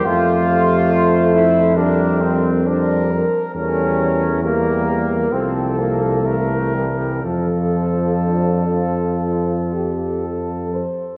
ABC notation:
X:1
M:4/4
L:1/8
Q:1/4=66
K:F
V:1 name="Trumpet section"
c4 B2 B2 | B2 B2 A2 B2 | A6- A z |]
V:2 name="French horn section"
A G A2 B2 c B | A2 G B A4 | A2 D F2 G A c |]
V:3 name="Trombone section"
F3 E D C D z | ^C2 B,2 =C B, A, G, | F,6- F, z |]
V:4 name="Trombone" clef=bass
A,4 G,2 G, z | G,2 G,2 F,2 E,2 | F,6- F, z |]
V:5 name="Tuba" clef=bass
F,,6- F,, z | E,,4 C,,4 | F,,6- F,, z |]